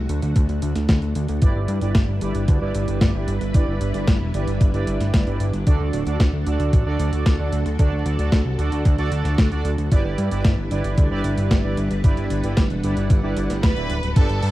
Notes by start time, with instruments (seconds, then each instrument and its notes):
Already playing: string machine A3 D4 F#4
0.09 analog synth bass D2, closed hi-hat
0.22 analog synth bass D2, closed hi-hat
0.36 analog synth bass D2, kick, closed hi-hat
0.49 analog synth bass D2, closed hi-hat
0.62 analog synth bass D2, closed hi-hat
0.76 analog synth bass D2, snare, closed hi-hat
0.89 analog synth bass D2, kick, snare, closed hi-hat
1.02 analog synth bass D2, closed hi-hat
1.15 analog synth bass D2, closed hi-hat
1.28 analog synth bass D2, closed hi-hat
1.42 analog synth bass G1, string machine G3 E4 B4, analog polysynth E4 G4 B4 D5, kick, closed hi-hat
1.55 analog synth bass G1
1.68 analog synth bass G2, closed hi-hat
1.81 analog synth bass G1, analog polysynth E4 G4 B4 D5, closed hi-hat
1.95 analog synth bass G1, kick, snare, closed hi-hat
2.08 analog synth bass G1
2.21 analog synth bass G1, analog polysynth E4 G4 B4 D5, closed hi-hat
2.35 analog synth bass G1, closed hi-hat
2.48 analog synth bass D2, kick, closed hi-hat
2.61 analog synth bass G1, analog polysynth E4 G4 B4 D5
2.75 analog synth bass G1, closed hi-hat
2.88 analog synth bass G1, closed hi-hat
3.01 analog synth bass G1, kick, snare, closed hi-hat
3.14 analog synth bass G1, analog polysynth E4 G4 B4 D5
3.28 analog synth bass G1, closed hi-hat
3.41 analog synth bass G1, closed hi-hat
3.54 analog synth bass G1, analog polysynth E4 G4 B4 D5, kick, closed hi-hat
3.68 analog synth bass G1
3.81 analog synth bass G1, closed hi-hat
3.94 analog synth bass G1, analog polysynth E4 G4 B4 D5, closed hi-hat
4.08 analog synth bass G1, kick, snare, closed hi-hat
4.21 analog synth bass E1
4.34 analog synth bass G1, analog polysynth E4 G4 B4 D5, closed hi-hat
4.47 analog synth bass G1, closed hi-hat
4.61 analog synth bass G1, kick, closed hi-hat
4.74 analog synth bass G1, analog polysynth E4 G4 B4 D5, closed hi-hat
4.87 analog synth bass G1, closed hi-hat
5.00 analog synth bass G1, snare, closed hi-hat
5.14 analog synth bass G1, kick, snare, closed hi-hat
5.27 analog synth bass G1, analog polysynth E4 G4 B4 D5, closed hi-hat
5.40 analog synth bass G1, closed hi-hat
5.53 analog synth bass G1, closed hi-hat
5.67 analog synth bass D2, analog polysynth D4 F#4 A4 D5, string machine F#4 A4, kick, closed hi-hat
5.80 analog synth bass D2
5.93 analog synth bass D1, closed hi-hat
6.06 analog synth bass D2, analog polysynth D4 F#4 A4 D5, closed hi-hat
6.20 analog synth bass D2, kick, snare, closed hi-hat
6.33 analog synth bass D2
6.46 analog synth bass D2, analog polysynth D4 F#4 A4 D5, closed hi-hat
6.60 analog synth bass D2, closed hi-hat
6.73 analog synth bass A1, kick, closed hi-hat
6.86 analog synth bass D2, analog polysynth D4 F#4 A4 D5
6.99 analog synth bass D2, closed hi-hat
7.13 analog synth bass D2, closed hi-hat
7.26 analog synth bass D2, kick, snare, closed hi-hat
7.39 analog synth bass D2, analog polysynth D4 F#4 A4 D5
7.52 analog synth bass D2, closed hi-hat
7.66 analog synth bass D2, closed hi-hat
7.79 analog synth bass D2, analog polysynth D4 F#4 A4 D5, kick, closed hi-hat
7.92 analog synth bass D2
8.05 analog synth bass D2, closed hi-hat
8.19 analog synth bass D2, analog polysynth D4 F#4 A4 D5, closed hi-hat
8.32 analog synth bass D2, kick, snare, closed hi-hat
8.45 analog synth bass C2
8.58 analog synth bass D2, analog polysynth D4 F#4 A4 D5, closed hi-hat
8.72 analog synth bass D2, closed hi-hat
8.85 analog synth bass D2, kick, closed hi-hat
8.98 analog synth bass D2, analog polysynth D4 F#4 A4 D5, closed hi-hat
9.11 analog synth bass D2, closed hi-hat
9.25 analog synth bass D2, snare, closed hi-hat
9.38 analog synth bass D2, kick, snare, closed hi-hat
9.51 analog synth bass D2, analog polysynth D4 F#4 A4 D5, closed hi-hat
9.65 analog synth bass D2, closed hi-hat
9.78 analog synth bass D2, closed hi-hat
9.92 analog synth bass G1, string machine G3 D4 E4 B4, analog polysynth E4 G4 B4 D5, kick, closed hi-hat
10.05 analog synth bass G1
10.18 analog synth bass G2, closed hi-hat
10.31 analog synth bass G1, analog polysynth E4 G4 B4 D5, closed hi-hat
10.44 analog synth bass G1, kick, snare, closed hi-hat
10.58 analog synth bass G1
10.71 analog synth bass G1, analog polysynth E4 G4 B4 D5, closed hi-hat
10.84 analog synth bass G1, closed hi-hat
10.98 analog synth bass D2, kick, closed hi-hat
11.11 analog synth bass G1, analog polysynth E4 G4 B4 D5
11.24 analog synth bass G1, closed hi-hat
11.38 analog synth bass G1, closed hi-hat
11.51 analog synth bass G1, kick, snare, closed hi-hat
11.64 analog synth bass G1, analog polysynth E4 G4 B4 D5
11.77 analog synth bass G1, closed hi-hat
11.91 analog synth bass G1, closed hi-hat
12.04 analog synth bass G1, analog polysynth E4 G4 B4 D5, string machine F#5, kick, closed hi-hat
12.17 analog synth bass G1, closed hi-hat
12.30 analog synth bass G1, closed hi-hat
12.44 analog synth bass G1, analog polysynth E4 G4 B4 D5, closed hi-hat
12.57 analog synth bass G1, kick, snare, closed hi-hat
12.70 analog synth bass E1, closed hi-hat
12.83 analog synth bass G1, analog polysynth E4 G4 B4 D5, closed hi-hat
12.97 analog synth bass G1, closed hi-hat
13.10 analog synth bass G1, kick, closed hi-hat
13.23 analog synth bass G1, analog polysynth E4 G4 B4 D5
13.37 analog synth bass G1, closed hi-hat
13.50 analog synth bass G1, snare, closed hi-hat
13.63 analog synth bass D1, violin section B4 B5, kick, snare, closed hi-hat
13.76 analog synth bass D1, analog polysynth E4 G4 B4 D5, closed hi-hat
13.90 analog synth bass D1, closed hi-hat
14.03 analog synth bass D1, closed hi-hat
14.16 analog synth bass G1, string machine G3 G4 B4 D5, analog polysynth D4 G4 B4 D5, violin section A4 A5, kick, closed hi-hat, crash
14.29 analog synth bass G1, closed hi-hat
14.43 analog synth bass G2, open hi-hat